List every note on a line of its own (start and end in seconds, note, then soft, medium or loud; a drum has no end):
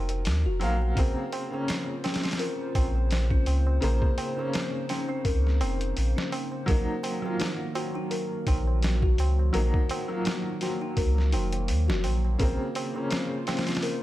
0.00 0.27 F1 medium
0.00 0.59 F#3 medium
0.00 0.61 A#3 medium
0.00 0.43 D#4 medium
0.00 0.99 D#4 loud
0.00 0.98 F4 medium
0.09 closed hi-hat soft
0.09 tabla na soft
0.25 0.47 D#2 medium
0.25 snare loud
0.25 open hi-hat medium
0.25 tabla na soft
0.45 0.63 F1 medium
0.45 0.96 F#4 medium
0.59 0.93 A#1 medium
0.59 0.92 F#3 medium
0.59 0.93 A#3 medium
0.59 0.94 F5 loud
0.59 open hi-hat medium
0.59 tabla na medium
0.82 tabla na soft
0.95 1.14 A#1 loud
0.95 1.47 C#3 medium
0.95 6.64 C#3 medium
0.95 14.03 A#3 medium
0.95 1.48 A#3 medium
0.95 1.49 C4 loud
0.95 3.80 F4 medium
0.95 1.16 A#4 medium
0.95 6.64 C5 medium
0.95 kick loud
0.95 open hi-hat medium
0.95 tabla na soft
1.32 open hi-hat medium
1.32 tabla na loud
1.50 1.60 C#3 medium
1.50 1.61 A#3 medium
1.50 1.62 C#4 medium
1.50 tabla na soft
1.68 1.87 C4 medium
1.68 snare loud
1.68 open hi-hat medium
1.68 tabla na soft
2.04 2.22 C#4 medium
2.04 snare medium
2.04 open hi-hat medium
2.04 tabla na medium
2.14 snare medium
2.14 open hi-hat medium
2.23 2.39 C4 medium
2.23 snare medium
2.23 open hi-hat medium
2.23 tabla na soft
2.31 snare medium
2.31 open hi-hat medium
2.39 2.59 A#4 loud
2.39 open hi-hat medium
2.39 tabla na soft
2.75 3.44 A#1 medium
2.75 3.29 C4 medium
2.75 kick medium
2.75 open hi-hat medium
2.75 tabla na loud
2.96 tabla na soft
3.11 snare loud
3.11 open hi-hat medium
3.11 tabla na soft
3.31 3.81 C#4 medium
3.31 kick medium
3.46 3.79 C#2 medium
3.46 open hi-hat medium
3.46 tabla na medium
3.67 tabla na medium
3.81 4.00 A#1 loud
3.81 4.32 C#3 medium
3.81 4.33 A#3 medium
3.81 6.65 D#4 medium
3.81 4.01 A#4 medium
3.81 4.34 C5 loud
3.81 open hi-hat medium
3.81 tabla na soft
4.02 kick loud
4.18 open hi-hat medium
4.18 tabla na loud
4.36 4.46 C#3 medium
4.36 4.47 A#3 medium
4.36 4.48 C#4 medium
4.36 tabla na medium
4.53 4.73 C4 medium
4.53 snare loud
4.53 open hi-hat medium
4.53 tabla na soft
4.89 5.07 C#4 medium
4.89 snare soft
4.89 open hi-hat medium
4.89 tabla na medium
5.09 5.24 C4 medium
5.09 tabla na medium
5.25 5.63 C#2 medium
5.25 5.44 A#4 medium
5.25 kick loud
5.25 open hi-hat medium
5.25 tabla na soft
5.47 snare soft
5.61 5.93 F1 medium
5.61 6.15 C4 medium
5.61 open hi-hat medium
5.61 tabla na loud
5.80 closed hi-hat soft
5.80 tabla na soft
5.96 6.15 A#1 medium
5.96 open hi-hat medium
5.96 tabla na soft
6.16 6.67 C#4 medium
6.16 snare loud
6.32 open hi-hat medium
6.32 tabla na medium
6.52 tabla na medium
6.66 6.86 A#1 loud
6.66 12.36 D#3 medium
6.66 7.18 F#3 medium
6.66 12.36 F#3 medium
6.66 7.19 A#3 medium
6.66 7.20 D#4 loud
6.66 12.36 F#4 medium
6.66 6.87 A#4 medium
6.66 kick loud
6.66 open hi-hat medium
6.66 tabla na soft
7.03 open hi-hat medium
7.03 tabla na medium
7.22 7.32 F#3 medium
7.22 7.33 A#3 medium
7.22 7.34 F4 medium
7.22 tabla na medium
7.40 7.59 D#4 medium
7.40 snare loud
7.40 open hi-hat medium
7.40 tabla na soft
7.75 7.93 F#4 medium
7.75 open hi-hat medium
7.75 tabla na medium
7.94 8.10 D#4 medium
7.94 tabla na soft
8.11 8.30 A#4 loud
8.11 open hi-hat medium
8.11 tabla na soft
8.47 9.15 A#1 medium
8.47 9.00 D#4 medium
8.47 kick medium
8.47 open hi-hat medium
8.47 tabla na loud
8.67 tabla na medium
8.82 snare loud
8.82 open hi-hat medium
8.82 tabla na soft
9.02 9.52 F#4 medium
9.02 kick medium
9.18 9.50 C#2 medium
9.18 open hi-hat medium
9.18 tabla na medium
9.39 tabla na medium
9.53 9.72 A#1 loud
9.53 10.04 F#3 medium
9.53 10.05 A#3 medium
9.53 10.06 D#4 loud
9.53 9.73 A#4 medium
9.53 open hi-hat medium
9.53 tabla na soft
9.74 kick loud
9.89 open hi-hat medium
9.89 tabla na loud
10.08 10.18 F#3 medium
10.08 10.19 A#3 medium
10.08 10.20 F4 medium
10.08 tabla na soft
10.25 10.44 D#4 medium
10.25 snare loud
10.25 open hi-hat medium
10.25 tabla na soft
10.61 10.79 F#4 medium
10.61 snare soft
10.61 open hi-hat medium
10.61 tabla na medium
10.81 10.96 D#4 medium
10.81 tabla na soft
10.97 11.35 C#2 medium
10.97 11.16 A#4 medium
10.97 kick loud
10.97 open hi-hat medium
10.97 tabla na soft
11.18 snare soft
11.32 11.71 F1 medium
11.32 11.86 D#4 medium
11.32 open hi-hat medium
11.32 tabla na medium
11.53 closed hi-hat soft
11.53 tabla na medium
11.68 11.91 D#2 medium
11.68 open hi-hat medium
11.68 tabla na soft
11.88 12.06 F1 medium
11.88 12.38 F#4 medium
11.88 snare loud
12.04 12.36 A#1 medium
12.04 open hi-hat medium
12.04 tabla na medium
12.25 tabla na medium
12.38 12.57 A#1 loud
12.38 12.90 C#3 medium
12.38 14.03 C#3 medium
12.38 12.91 A#3 medium
12.38 12.92 C4 loud
12.38 14.03 F4 medium
12.38 12.59 A#4 medium
12.38 14.03 C5 medium
12.38 kick loud
12.38 open hi-hat medium
12.38 tabla na soft
12.75 open hi-hat medium
12.75 tabla na medium
12.94 13.03 C#3 medium
12.94 13.04 A#3 medium
12.94 13.05 C#4 medium
12.94 tabla na medium
13.11 13.30 C4 medium
13.11 snare loud
13.11 open hi-hat medium
13.11 tabla na soft
13.47 13.65 C#4 medium
13.47 snare medium
13.47 open hi-hat medium
13.47 tabla na medium
13.57 snare medium
13.57 open hi-hat medium
13.67 13.82 C4 medium
13.67 snare medium
13.67 open hi-hat medium
13.67 tabla na medium
13.75 snare medium
13.75 open hi-hat medium
13.83 14.02 A#4 loud
13.83 open hi-hat medium
13.83 tabla na soft